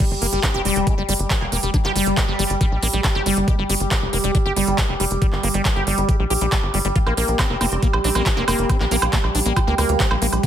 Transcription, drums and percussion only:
0.22 open hi-hat
0.33 closed hi-hat
0.43 kick, clap, closed hi-hat
0.65 open hi-hat
0.76 closed hi-hat
0.87 kick, closed hi-hat
1.09 open hi-hat
1.20 closed hi-hat
1.30 kick, clap, closed hi-hat
1.52 open hi-hat
1.63 closed hi-hat
1.74 kick, closed hi-hat
1.85 clap
1.96 open hi-hat
2.06 closed hi-hat
2.17 kick, clap, closed hi-hat
2.39 open hi-hat
2.50 closed hi-hat
2.61 kick, closed hi-hat
2.83 open hi-hat
2.93 closed hi-hat
3.04 kick, clap, closed hi-hat
3.26 open hi-hat
3.37 closed hi-hat
3.48 kick, closed hi-hat
3.69 open hi-hat
3.80 closed hi-hat
3.91 kick, clap, closed hi-hat
4.13 open hi-hat
4.24 closed hi-hat
4.35 kick, closed hi-hat
4.56 open hi-hat
4.67 closed hi-hat
4.78 kick, clap, closed hi-hat
5.00 open hi-hat
5.11 closed hi-hat
5.22 kick, closed hi-hat
5.33 clap
5.43 open hi-hat
5.54 closed hi-hat
5.65 kick, clap, closed hi-hat
5.87 open hi-hat
5.98 closed hi-hat
6.09 kick, closed hi-hat
6.30 open hi-hat
6.41 closed hi-hat
6.52 kick, clap, closed hi-hat
6.74 open hi-hat
6.85 closed hi-hat
6.96 kick, closed hi-hat
7.06 high woodblock
7.17 open hi-hat
7.28 closed hi-hat
7.39 kick, clap, closed hi-hat, high woodblock
7.61 open hi-hat, high woodblock
7.72 closed hi-hat
7.83 kick, closed hi-hat
7.93 high woodblock
8.04 open hi-hat
8.15 closed hi-hat, high woodblock
8.26 kick, clap, closed hi-hat
8.48 open hi-hat, high woodblock
8.59 closed hi-hat
8.70 kick, closed hi-hat, high woodblock
8.80 clap
8.91 open hi-hat
9.02 closed hi-hat, high woodblock
9.13 kick, clap, closed hi-hat
9.24 high woodblock
9.35 open hi-hat
9.46 closed hi-hat
9.56 kick, closed hi-hat, high woodblock
9.78 open hi-hat, high woodblock
9.89 closed hi-hat
10.00 kick, clap, closed hi-hat
10.11 high woodblock
10.22 open hi-hat
10.33 closed hi-hat, high woodblock
10.43 kick, closed hi-hat

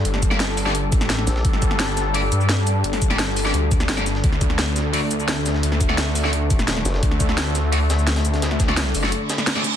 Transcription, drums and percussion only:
0.05 closed hi-hat
0.14 snare
0.22 kick, closed hi-hat, shaker
0.31 snare
0.40 snare, closed hi-hat
0.49 snare
0.57 closed hi-hat, open hi-hat, shaker
0.66 snare
0.75 closed hi-hat
0.92 kick, closed hi-hat, shaker
1.01 snare, shaker
1.10 snare, closed hi-hat
1.18 snare
1.27 snare, closed hi-hat, shaker
1.36 snare
1.45 kick, closed hi-hat
1.53 snare
1.62 kick, closed hi-hat, shaker
1.71 snare
1.80 snare, closed hi-hat
1.88 closed hi-hat
1.97 snare, closed hi-hat, shaker
2.14 closed hi-hat, open hi-hat
2.32 closed hi-hat, shaker
2.41 shaker
2.49 snare, closed hi-hat
2.67 closed hi-hat, shaker
2.84 closed hi-hat
2.93 snare, closed hi-hat
3.02 kick, closed hi-hat, shaker
3.10 snare, closed hi-hat
3.19 snare, closed hi-hat
3.28 snare
3.37 closed hi-hat, open hi-hat, shaker
3.45 snare
3.54 closed hi-hat
3.71 kick, closed hi-hat, shaker
3.80 snare, shaker
3.89 snare, closed hi-hat
3.98 snare, shaker
4.06 snare, closed hi-hat, shaker
4.15 snare
4.24 kick, closed hi-hat
4.32 snare
4.41 kick, closed hi-hat, shaker
4.50 snare
4.59 snare, closed hi-hat
4.67 closed hi-hat
4.76 snare, closed hi-hat, shaker
4.93 closed hi-hat, open hi-hat
5.11 closed hi-hat, shaker
5.20 shaker
5.28 snare, closed hi-hat
5.46 snare, closed hi-hat, shaker
5.54 snare
5.63 closed hi-hat
5.72 snare
5.81 kick, closed hi-hat, shaker
5.89 snare
5.98 snare, closed hi-hat
6.07 snare
6.15 closed hi-hat, open hi-hat, shaker
6.24 snare
6.33 closed hi-hat
6.50 kick, closed hi-hat, shaker
6.59 snare, shaker
6.68 snare, closed hi-hat
6.77 snare
6.85 snare, closed hi-hat, shaker
6.94 snare
7.03 kick, closed hi-hat
7.11 snare
7.20 kick, closed hi-hat, shaker
7.29 snare
7.38 snare, closed hi-hat
7.46 closed hi-hat
7.55 snare, closed hi-hat, shaker
7.72 closed hi-hat, open hi-hat
7.90 snare, closed hi-hat, shaker
7.99 shaker
8.07 snare, closed hi-hat
8.16 snare, closed hi-hat
8.25 closed hi-hat, shaker
8.34 snare, closed hi-hat
8.42 snare, closed hi-hat
8.51 snare
8.60 kick, snare, closed hi-hat, shaker
8.69 snare
8.77 snare, closed hi-hat
8.86 snare
8.95 closed hi-hat, open hi-hat, shaker
9.03 snare
9.12 closed hi-hat
9.29 snare, closed hi-hat, shaker
9.38 snare, shaker
9.47 snare, closed hi-hat
9.56 snare, closed hi-hat
9.64 snare, closed hi-hat, shaker
9.73 closed hi-hat

